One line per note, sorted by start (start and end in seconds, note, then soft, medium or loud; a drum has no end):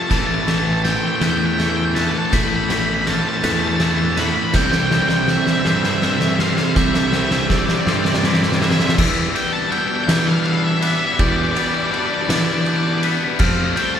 0.00 0.11 G3 medium
0.00 0.83 C4 medium
0.00 0.10 G4 medium
0.00 1.21 A4 medium
0.00 0.09 A5 medium
0.00 0.10 E6 medium
0.09 0.97 A1 loud
0.09 0.46 A2 medium
0.09 1.96 A2 medium
0.09 0.47 E3 medium
0.09 0.47 A3 medium
0.09 0.17 A5 medium
0.09 0.83 A6 medium
0.09 kick medium
0.09 snare medium
0.09 crash medium
0.18 0.25 A5 medium
0.26 0.34 A5 medium
0.34 0.42 A5 medium
0.42 1.19 A2 medium
0.42 0.49 A5 medium
0.47 1.20 E3 medium
0.47 2.69 E3 medium
0.47 1.20 A3 medium
0.47 0.58 A5 medium
0.47 snare medium
0.47 ride medium
0.58 0.66 A5 medium
0.66 0.73 A5 medium
0.73 0.81 A5 medium
0.84 3.07 C4 medium
0.84 0.91 G5 medium
0.84 1.58 A6 medium
0.84 snare medium
0.84 ride medium
0.91 0.98 G5 medium
0.99 1.06 G5 medium
1.08 1.15 G5 medium
1.16 1.22 G5 medium
1.20 2.08 E2 medium
1.20 1.57 A2 medium
1.20 1.59 E3 medium
1.20 1.58 A3 loud
1.20 1.94 B4 medium
1.20 1.30 G5 medium
1.20 snare medium
1.20 ride medium
1.31 1.38 G5 medium
1.38 1.46 G5 medium
1.46 1.53 G5 medium
1.54 1.61 G5 medium
1.58 1.94 A2 medium
1.58 1.95 E3 medium
1.58 1.95 A3 medium
1.58 3.80 E4 medium
1.58 1.69 G5 medium
1.58 2.32 E6 medium
1.58 snare medium
1.58 ride medium
1.70 1.76 G5 medium
1.76 1.84 G5 medium
1.85 1.92 G5 medium
1.95 2.30 A2 medium
1.95 2.32 E3 medium
1.95 2.32 A3 medium
1.95 3.42 B4 medium
1.95 2.02 A5 medium
1.95 snare medium
1.95 ride medium
2.03 2.11 A5 medium
2.11 2.17 A5 medium
2.18 2.25 A5 medium
2.26 2.33 A5 medium
2.31 3.19 A1 medium
2.31 2.67 A2 medium
2.31 4.18 A2 medium
2.31 2.68 E3 medium
2.31 2.68 A3 medium
2.31 2.40 B5 loud
2.31 3.07 G6 medium
2.31 kick loud
2.31 snare medium
2.31 ride medium
2.40 2.47 B5 medium
2.48 2.55 B5 medium
2.56 2.63 B5 medium
2.64 2.72 B5 medium
2.68 3.42 A2 medium
2.68 3.44 E3 medium
2.68 4.91 E3 medium
2.68 3.43 A3 medium
2.68 2.79 B5 medium
2.68 snare medium
2.68 ride medium
2.79 2.85 B5 medium
2.86 2.93 B5 medium
2.94 3.01 B5 medium
3.02 3.09 B5 medium
3.06 5.28 C4 medium
3.06 3.13 A5 loud
3.06 3.81 F6 medium
3.06 snare medium
3.06 ride medium
3.14 3.21 A5 medium
3.23 3.28 A5 medium
3.29 3.37 A5 medium
3.37 3.44 A5 loud
3.43 4.30 E2 medium
3.43 3.79 A2 medium
3.43 3.81 E3 loud
3.43 3.81 A3 loud
3.43 4.16 B4 medium
3.43 3.52 A5 medium
3.43 snare medium
3.43 ride loud
3.52 3.60 A5 loud
3.60 3.67 A5 medium
3.68 3.75 A5 loud
3.76 3.83 A5 medium
3.76 snare medium
3.76 ride medium
3.80 4.17 A2 medium
3.80 4.17 E3 medium
3.80 4.17 A3 medium
3.80 7.30 E4 medium
3.80 3.91 A5 medium
3.80 4.55 E6 medium
3.91 3.98 A5 medium
3.98 4.05 A5 medium
4.05 4.13 A5 medium
4.13 4.54 B4 medium
4.13 4.21 A5 medium
4.17 4.53 A2 medium
4.17 4.55 E3 medium
4.17 4.53 A3 loud
4.17 4.27 B5 medium
4.17 snare medium
4.17 ride medium
4.28 4.35 B5 medium
4.35 4.44 B5 medium
4.44 4.53 B5 medium
4.54 5.40 C2 loud
4.54 6.39 C3 medium
4.54 4.92 C3 medium
4.54 4.92 G3 medium
4.54 4.92 C4 loud
4.54 4.63 G5 loud
4.54 5.27 G6 medium
4.54 kick loud
4.54 snare medium
4.54 crash medium
4.63 4.70 G5 medium
4.71 4.78 G5 medium
4.71 snare loud
4.78 4.86 G5 medium
4.87 4.92 G5 medium
4.91 5.64 C3 medium
4.91 7.14 E3 medium
4.91 5.65 G3 loud
4.91 5.65 C4 medium
4.91 5.00 G5 medium
4.91 snare loud
5.02 5.08 G5 medium
5.09 5.16 G5 medium
5.09 snare loud
5.17 5.23 G5 medium
5.24 5.31 G5 medium
5.24 snare loud
5.28 7.13 C4 medium
5.28 5.37 E5 loud
5.28 6.02 G6 medium
5.37 5.45 E5 medium
5.46 5.52 E5 medium
5.46 snare loud
5.52 5.59 E5 medium
5.60 5.67 E5 loud
5.65 6.51 G2 medium
5.65 6.01 C3 loud
5.65 6.03 G3 medium
5.65 6.02 C4 loud
5.65 6.39 C5 medium
5.65 5.75 E5 medium
5.65 snare loud
5.75 5.82 E5 loud
5.83 5.89 E5 medium
5.83 snare loud
5.90 5.97 E5 loud
5.98 6.05 E5 medium
6.02 6.38 C3 medium
6.02 6.40 G3 medium
6.02 6.39 C4 medium
6.02 6.13 E5 loud
6.02 6.76 E6 medium
6.02 snare medium
6.13 6.21 E5 medium
6.20 6.28 E5 medium
6.20 snare loud
6.29 6.35 E5 medium
6.36 6.74 C3 medium
6.36 6.40 E5 medium
6.36 snare loud
6.40 6.75 G3 medium
6.40 6.75 C4 medium
6.40 7.87 C5 medium
6.40 6.48 F5 medium
6.49 6.57 F5 medium
6.57 6.64 F5 medium
6.57 snare loud
6.65 6.73 F5 medium
6.76 7.62 C2 loud
6.76 7.12 C3 medium
6.76 8.61 C3 medium
6.76 7.12 G3 medium
6.76 7.13 C4 loud
6.76 6.84 E5 medium
6.76 7.50 G6 loud
6.76 kick loud
6.76 snare loud
6.85 6.92 E5 medium
6.92 7.00 E5 medium
6.92 snare loud
7.00 7.07 E5 medium
7.07 7.15 E5 medium
7.12 7.85 C3 medium
7.12 8.98 E3 medium
7.12 7.86 G3 medium
7.12 7.86 C4 loud
7.12 7.23 E5 medium
7.12 snare loud
7.23 7.31 E5 medium
7.31 7.39 E5 medium
7.31 snare loud
7.39 7.47 E5 medium
7.50 8.98 C4 medium
7.50 7.58 D5 loud
7.50 8.24 E6 medium
7.50 kick medium
7.50 snare loud
7.58 7.66 D5 medium
7.66 7.73 D5 medium
7.66 snare loud
7.74 7.80 D5 medium
7.81 7.88 D5 medium
7.86 8.73 G2 loud
7.86 8.21 C3 loud
7.86 8.22 G3 loud
7.86 8.22 C4 loud
7.86 8.61 C5 medium
7.86 7.96 D5 medium
7.86 snare loud
7.96 8.04 D5 medium
8.04 8.12 D5 medium
8.04 snare loud
8.12 8.19 D5 medium
8.12 snare loud
8.19 8.60 C3 medium
8.19 8.60 G3 medium
8.19 8.27 D5 medium
8.23 8.61 C4 loud
8.23 8.98 E4 medium
8.23 8.34 D5 medium
8.23 8.98 D6 medium
8.23 snare loud
8.33 8.42 D5 medium
8.33 snare loud
8.42 8.49 D5 medium
8.42 snare loud
8.49 8.57 D5 medium
8.49 snare loud
8.61 8.96 C3 medium
8.61 8.96 G3 loud
8.61 8.96 C4 medium
8.61 8.98 C5 medium
8.61 8.70 E5 medium
8.61 snare loud
8.71 8.79 E5 medium
8.71 snare loud
8.79 8.86 E5 medium
8.79 snare loud
8.87 8.95 E5 medium
8.87 snare loud
8.97 9.27 E2 medium
8.97 9.69 E3 medium
8.97 10.83 E3 medium
8.97 9.36 G3 medium
8.97 9.35 B3 medium
8.97 9.33 E4 loud
8.97 9.71 E6 medium
8.97 kick loud
8.97 crash loud
9.34 11.56 G3 medium
9.34 9.71 G3 medium
9.34 9.71 B3 medium
9.34 9.72 E4 medium
9.34 9.53 G5 medium
9.34 ride medium
9.53 9.71 A5 loud
9.70 10.07 E3 medium
9.70 10.08 G3 medium
9.70 10.07 B3 loud
9.70 10.44 D4 medium
9.70 10.05 E4 medium
9.70 9.78 G5 loud
9.70 10.46 E6 medium
9.70 ride medium
9.78 9.86 G5 medium
9.88 9.95 G5 medium
9.96 10.04 G5 medium
10.04 10.81 B3 medium
10.04 10.80 E4 medium
10.04 10.12 G5 loud
10.08 10.94 E3 loud
10.08 11.17 E3 medium
10.08 10.83 G3 medium
10.08 10.19 G5 medium
10.08 snare loud
10.08 ride loud
10.20 10.28 G5 medium
10.27 10.33 F5 medium
10.33 10.41 F5 medium
10.43 11.92 D4 medium
10.43 10.49 F5 medium
10.43 ride medium
10.50 10.57 F5 medium
10.57 10.64 F5 medium
10.64 10.82 E5 medium
10.81 11.19 G3 medium
10.81 11.18 B3 medium
10.81 11.20 E4 medium
10.81 12.67 B4 medium
10.81 10.90 E5 loud
10.81 11.19 D6 medium
10.81 ride medium
10.90 10.98 E5 medium
10.99 11.06 E5 medium
11.06 11.13 E5 medium
11.13 11.20 E5 medium
11.19 11.48 E2 loud
11.19 11.91 E3 medium
11.19 13.04 E3 medium
11.19 11.57 G3 medium
11.19 11.56 B3 medium
11.19 11.54 E4 loud
11.19 11.28 D5 medium
11.19 11.56 G6 loud
11.19 kick loud
11.19 ride loud
11.29 11.36 D5 medium
11.36 11.43 D5 medium
11.43 11.51 D5 medium
11.51 11.93 E4 medium
11.51 11.58 D5 medium
11.55 13.43 G3 medium
11.55 11.93 G3 medium
11.55 11.92 B3 medium
11.55 11.66 D5 medium
11.55 12.29 D6 medium
11.55 ride medium
11.67 11.74 D5 medium
11.74 11.82 D5 medium
11.82 11.90 D5 medium
11.91 12.30 E3 medium
11.91 12.30 G3 medium
11.91 12.28 B3 medium
11.91 12.66 D4 medium
11.91 12.28 E4 medium
11.91 11.98 D5 medium
11.91 ride medium
11.98 12.05 D5 medium
12.06 12.14 D5 medium
12.14 12.21 D5 medium
12.21 12.29 D5 medium
12.29 13.15 E3 loud
12.29 13.38 E3 medium
12.29 13.05 G3 medium
12.29 13.03 B3 medium
12.29 13.01 E4 medium
12.29 13.40 E4 medium
12.29 12.37 D5 medium
12.29 snare loud
12.29 ride loud
12.38 12.44 D5 medium
12.45 12.52 D5 medium
12.53 12.60 D5 medium
12.61 12.68 D5 medium
12.65 13.40 D4 medium
12.65 12.76 D5 medium
12.65 13.40 G6 medium
12.65 ride medium
12.76 12.83 D5 medium
12.83 12.91 D5 medium
12.93 13.00 D5 medium
13.02 13.40 G3 medium
13.02 13.38 B3 medium
13.02 13.37 E4 medium
13.02 13.40 B4 medium
13.02 ride medium
13.39 13.69 F2 loud
13.39 14.00 F3 medium
13.39 13.77 A3 medium
13.39 13.76 C4 loud
13.39 13.75 F4 loud
13.39 14.00 F6 loud
13.39 kick loud
13.39 crash loud
13.75 14.00 G3 medium
13.75 14.00 A3 medium
13.75 14.00 C4 medium
13.75 14.00 F4 medium
13.75 13.94 G5 loud
13.75 ride medium
13.95 14.00 A5 loud